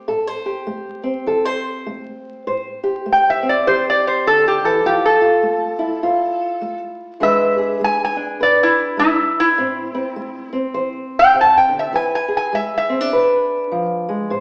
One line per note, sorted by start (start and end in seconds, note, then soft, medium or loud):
0.00 1.03 C4 medium
0.08 0.63 A2 medium
0.08 0.27 A4 medium
0.27 1.27 C5 medium
0.46 2.44 G4 medium
0.67 1.23 A3 medium
1.03 3.42 C4 medium
1.26 1.82 E3 medium
1.26 1.45 A4 medium
1.45 2.46 C5 medium
1.86 2.42 A3 medium
2.47 3.02 A2 medium
2.47 4.82 C5 medium
2.84 3.66 G4 medium
3.06 3.61 A3 medium
3.12 3.29 G5 medium
3.30 3.47 E5 medium
3.43 5.78 C4 soft
3.49 3.67 D5 medium
3.67 4.21 E3 medium
3.67 4.83 G4 medium
3.67 3.86 C5 medium
3.90 4.07 D5 loud
4.07 4.26 C5 medium
4.26 4.62 D3 medium
4.26 4.46 A4 medium
4.48 4.66 G4 medium
4.64 4.85 E3 medium
4.64 4.84 A4 medium
4.85 5.40 F3 medium
4.85 5.20 F4 medium
4.85 5.05 G4 medium
5.05 6.79 A4 medium
5.21 6.02 F4 medium
5.43 5.98 A3 medium
5.79 7.20 E4 medium
6.03 6.58 C3 medium
6.03 7.19 F4 medium
6.61 7.17 A3 medium
7.20 7.76 E3 medium
7.20 7.80 G#3 medium
7.20 8.15 D4 medium
7.20 7.57 G#4 medium
7.20 8.39 B4 medium
7.20 7.80 E5 loud
7.58 9.56 G#4 medium
7.81 8.36 G#3 medium
7.81 8.02 G#5 medium
8.05 8.41 G#5 medium
8.16 9.56 D4 medium
8.40 8.95 B2 medium
8.40 9.56 B4 medium
8.40 8.61 D5 medium
8.63 8.98 E4 medium
8.97 9.53 G#3 medium
8.97 9.38 E4 loud
9.40 10.55 E4 loud
9.58 10.13 A2 medium
9.58 9.93 C4 medium
9.95 10.51 C4 medium
10.16 10.72 A3 medium
10.53 11.95 C4 medium
10.74 11.30 E3 medium
10.74 11.91 C5 medium
11.19 11.37 G5 loud
11.33 11.71 C3 medium
11.41 11.57 A5 loud
11.57 11.76 G5 medium
11.69 11.92 D3 medium
11.79 11.97 E5 medium
11.93 12.49 E3 medium
11.93 13.12 B4 medium
11.93 12.14 G#5 medium
12.15 12.35 G#5 medium
12.28 14.28 G#4 medium
12.37 12.55 G#5 medium
12.53 13.08 G#3 medium
12.53 12.74 E5 medium
12.78 13.07 E5 medium
12.89 13.01 C4 medium
13.01 14.32 D4 medium
13.12 13.68 B2 medium
13.12 14.29 B4 medium
13.72 14.09 F3 medium
14.09 14.32 G#3 medium
14.30 14.40 A2 medium
14.30 14.40 C5 medium